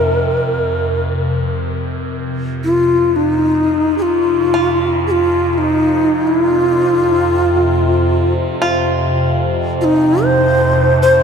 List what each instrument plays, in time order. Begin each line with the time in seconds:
Already playing: ambient pad F2 C3, native american-style wooden flute A#4
2.64 native american-style wooden flute F4
3.16 native american-style wooden flute D#4
3.23 ambient pad F2 C3
3.98 native american-style wooden flute G#4
4.02 native american-style wooden flute F4
4.54 five-string banjo F4
5.07 native american-style wooden flute G#4
5.11 native american-style wooden flute F4
5.53 native american-style wooden flute F4
5.58 native american-style wooden flute D#4
6.27 native american-style wooden flute E4
6.45 native american-style wooden flute F4
8.62 five-string banjo F4
9.81 native american-style wooden flute D#4 F4
10.24 native american-style wooden flute C5
11.02 native american-style wooden flute C5